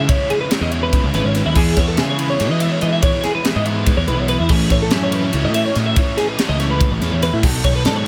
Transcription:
0.07 overdriven electric guitar C#3 G#3 C#4 E4, clean electric guitar C#5, kick, ride
0.30 clean electric guitar G#4, ride
0.41 clean electric guitar B4
0.49 overdriven electric guitar C#3 G#3 C#4 E4, clean electric guitar G#4, snare, ride
0.61 picked electric bass E2, clean electric guitar D#5
0.70 overdriven electric guitar G#3 C#4 E4, clean electric guitar C#5, ride
0.83 clean electric guitar B4
0.92 overdriven electric guitar C#3 G#3 C#4 E4, kick, ride
1.04 picked electric bass C#2, clean electric guitar C#5
1.13 picked electric bass G#1, overdriven electric guitar G#3 C#4 E4, clean electric guitar B4, snare, ride
1.24 picked electric bass G#1, clean electric guitar C#5
1.35 clean electric guitar B4, snare, ride
1.46 picked electric bass D#2, clean electric guitar E4
1.55 picked electric bass E2, overdriven electric guitar E3 G#3 B3 E4, clean electric guitar G#4, kick, crash
1.77 picked electric bass E2, clean electric guitar C#5, kick, snare, ride
1.88 clean electric guitar A4
1.97 picked electric bass C#3, overdriven electric guitar E3 G#3 B3 E4, clean electric guitar G#4, snare, ride
2.09 clean electric guitar C#5
2.18 overdriven electric guitar G#3 B3 E4, clean electric guitar B4, ride
2.30 clean electric guitar C#5
2.39 picked electric bass G#2, overdriven electric guitar E3 G#3 B3 E4, ride
2.50 picked electric bass E3, clean electric guitar D#5
2.60 overdriven electric guitar G#3 B3 E4, clean electric guitar E5, ride
2.72 clean electric guitar C#5
2.81 picked electric bass E3, clean electric guitar D#5, ride
2.93 clean electric guitar E5
3.02 overdriven electric guitar E3 G#3 B3 E4, clean electric guitar C#5, kick, ride
3.23 clean electric guitar G#4, snare, ride
3.35 clean electric guitar B4
3.44 overdriven electric guitar E3 G#3 B3 E4, clean electric guitar G#4, snare, ride
3.56 picked electric bass G#2, clean electric guitar D#5
3.65 overdriven electric guitar G#3 B3 E4, clean electric guitar C#5, ride
3.76 clean electric guitar B4
3.85 overdriven electric guitar E3 G#3 B3 E4, kick, snare, ride
3.97 picked electric bass E2, clean electric guitar C#5
4.07 picked electric bass B1, overdriven electric guitar G#3 B3 E4, clean electric guitar B4, ride
4.18 picked electric bass B1, clean electric guitar C#5
4.28 clean electric guitar B4, ride
4.40 picked electric bass E2, clean electric guitar E4
4.49 picked electric bass A1, overdriven electric guitar A2 E3 A3 C#4 E4, clean electric guitar G#4, kick, crash
4.70 picked electric bass A1, clean electric guitar C#5, kick, ride
4.82 clean electric guitar A4
4.91 picked electric bass F#2, overdriven electric guitar E3 A3 C#4 E4, clean electric guitar G#4, snare, ride
5.03 clean electric guitar C#5
5.11 overdriven electric guitar A3 C#4 E4, clean electric guitar B4, ride
5.24 clean electric guitar C#5
5.32 picked electric bass C#2, overdriven electric guitar A2 E3 A3 C#4 E4, ride
5.44 picked electric bass A2, clean electric guitar D#5
5.53 overdriven electric guitar A3 C#4 E4, clean electric guitar E5, ride
5.65 clean electric guitar C#5
5.75 picked electric bass A2, clean electric guitar D#5, snare, ride
5.86 clean electric guitar E5
5.96 overdriven electric guitar A2 E3 A3 C#4 E4, clean electric guitar C#5, kick, ride
6.17 clean electric guitar G#4, snare, ride
6.28 clean electric guitar B4
6.37 overdriven electric guitar E3 A3 C#4 E4, clean electric guitar G#4, snare, ride
6.49 picked electric bass C#2, clean electric guitar D#5
6.58 overdriven electric guitar A3 C#4 E4, clean electric guitar C#5, snare, ride
6.71 clean electric guitar B4
6.79 overdriven electric guitar A2 E3 A3 C#4 E4, kick, ride
6.91 picked electric bass A1, clean electric guitar C#5
7.00 picked electric bass E2, overdriven electric guitar A3 C#4 E4, clean electric guitar B4, snare, ride
7.12 picked electric bass E2, clean electric guitar C#5
7.22 clean electric guitar B4, snare, ride
7.33 picked electric bass A2, clean electric guitar E4
7.42 picked electric bass B1, overdriven electric guitar B2 D#3 F#3 B3 D#4 A4, clean electric guitar F#4, kick, crash
7.64 picked electric bass B1, clean electric guitar C#5, kick, ride
7.75 clean electric guitar B4
7.84 picked electric bass G#2, overdriven electric guitar F#3 B3 D#4 A4, clean electric guitar A4, snare, ride
7.96 clean electric guitar C#5

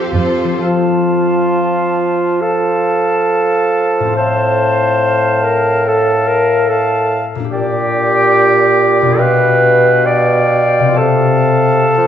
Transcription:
Already playing: viola section F3 C4, harp F3 C4 F4 A4 C5, cello section G4, clarinet G4, violin section A4 C5 F5
0.13 double bass section F2, viola section F3 C4, cello section F4, violin section A4 C5
0.31 harp C5
0.44 harp F3
0.49 harp C4
0.53 harp F4
0.58 bassoon F3, clarinet F4, harp A4, oboe F5, flute A5
2.41 clarinet A4, oboe F5, flute A5
4.00 harp A2
4.04 harp C4
4.09 harp F4
4.13 harp A4, clarinet C5, flute A5
4.17 bassoon A2, oboe F5
5.44 clarinet A#4
5.88 clarinet A4, oboe F5, flute A5
6.27 clarinet A#4
6.69 clarinet A4, oboe F5, flute A5
7.35 harp A#2
7.40 harp D4
7.44 harp G4
7.50 bassoon A#2, clarinet G4, oboe D5, flute G5
9.02 harp B2
9.06 harp D4
9.11 harp F4
9.15 harp G4, clarinet B4, flute G5
9.20 bassoon B2, oboe F5
10.04 clarinet D5, oboe F5, flute G5
10.80 harp C3
10.85 harp C4
10.89 harp F4
10.93 harp A4, flute A5
10.98 bassoon C3, clarinet A4, oboe F5
11.97 bassoon F3

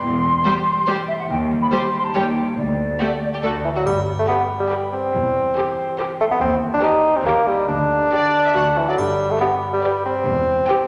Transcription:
Already playing: harp G4, flute C6
0.02 double bass section E1, cello section E2, harp E3
0.24 harp G3
0.44 viola section G3, harp G4, violin section G4 C5
0.66 harp C5
0.87 viola section G3, harp G4, violin section G4 C5
1.08 harp C5, flute E5
1.19 flute F#5
1.29 cello section D#2, double bass section D#2, harp D#3, flute G5
1.51 harp G3
1.62 flute B5
1.71 viola section G3, harp G4, violin section G4 C5, flute C6
1.93 harp C5
2.04 flute A5
2.13 cello section D#2, double bass section D#2, harp D#3, viola section G3, violin section G4 C#5, flute G5
2.35 harp G4 C#5
2.57 cello section D2, double bass section D2, harp D3, flute D5
2.79 harp A3
2.99 viola section A3, violin section F#4 G4, harp G4
3.22 harp D5
3.33 violin section G4
3.42 cello section D2, double bass section D2, harp D3, viola section A3, violin section F#4 A4
3.64 bassoon E3, harp F#4 D5
3.76 bassoon F#3, violin section F#4
3.86 double bass section G1, cello section G2, harp G2, bassoon G3, triangle
4.08 harp B3
4.19 bassoon A3
4.28 bassoon B3, violin section G4 B4, harp G4, viola section G4
4.50 harp D5
4.60 bassoon G3
4.70 violin section G4 B4, viola section G4, harp B4
4.93 bassoon C4, harp D5
5.15 double bass section E1, cello section E2, harp E3
5.36 harp C4
5.56 violin section G4 C5, harp G4, viola section G4
5.78 harp C5
5.99 harp G4, violin section G4 C5, viola section G4
6.20 bassoon A3, harp C5
6.31 bassoon B3
6.41 cello section D#2, double bass section D#2, harp D#3, bassoon C4
6.62 harp C4
6.73 bassoon D4
6.83 bassoon D#4, harp G4, violin section G4 C5, viola section G4
7.05 harp C5
7.16 bassoon C4
7.25 cello section D#2, double bass section D#2, harp D#3, bassoon A#3, viola section G4, violin section A#4 C#5
7.47 bassoon G3, harp G4 D#5
7.68 double bass section D2, cello section D2, harp D3, bassoon D4
7.91 harp D4
8.12 harp G4, viola section G4, violin section D5
8.33 harp B4
8.45 violin section E5
8.54 cello section D2, double bass section D2, harp D3, viola section F#4, violin section D5 F#5
8.76 bassoon E3, harp F#4 A4
8.88 bassoon F#3, violin section D5
8.98 double bass section G1, cello section G2, harp G2, bassoon G3, triangle
9.19 harp D4
9.31 bassoon A3
9.40 bassoon B3, viola section G4, violin section B4 D5
9.62 harp B4
9.73 bassoon G3
9.83 viola section G4, violin section B4 D5, harp D5
10.05 bassoon C4, harp B4
10.26 double bass section E1, cello section E2, harp E3
10.48 harp C4
10.68 harp G4, viola section G4, violin section C5 G5

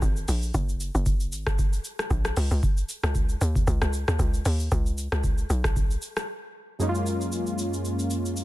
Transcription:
0.02 log drum bass G#1, kick, shaker
0.16 shaker
0.28 log drum bass A#1, open hi-hat, shaker
0.42 shaker
0.54 log drum bass F#1, kick, shaker
0.69 shaker
0.80 shaker
0.95 log drum bass F#1, shaker
1.06 kick, shaker
1.20 shaker
1.32 log drum bass G#1, shaker
1.47 kick, cross-stick, shaker
1.59 kick, shaker
1.73 shaker
1.84 shaker
1.99 cross-stick, shaker
2.10 log drum bass A#1, kick, shaker
2.25 cross-stick, shaker
2.37 log drum bass C#2, open hi-hat, shaker
2.51 log drum bass C#2, shaker
2.63 kick, shaker
2.77 shaker
2.89 shaker
3.03 log drum bass C#2, cross-stick, shaker
3.15 kick, shaker
3.29 shaker
3.41 log drum bass D#2, shaker
3.55 kick, shaker
3.67 log drum bass C#2, kick, shaker
3.82 log drum bass C#2, cross-stick, shaker
3.93 shaker
4.08 log drum bass D#2, cross-stick, shaker
4.19 log drum bass C#2, kick, shaker
4.34 shaker
4.45 log drum bass D#2, open hi-hat, shaker
4.60 shaker
4.72 log drum bass C#2, kick, shaker
4.86 shaker
4.98 shaker
5.12 log drum bass C#2, cross-stick, shaker
5.24 kick, shaker
5.38 shaker
5.50 log drum bass B1, shaker
5.64 kick, cross-stick, shaker
5.76 kick, shaker
5.91 shaker
6.02 shaker
6.17 cross-stick, shaker
6.79 synth keys F#2 G#3 A#3 C#4 D#4, shaker
6.89 synth keys F4
6.95 shaker
7.06 shaker
7.21 shaker
7.32 shaker
7.46 shaker
7.59 shaker
7.74 shaker
7.85 shaker
7.99 shaker
8.10 shaker
8.26 shaker
8.37 shaker

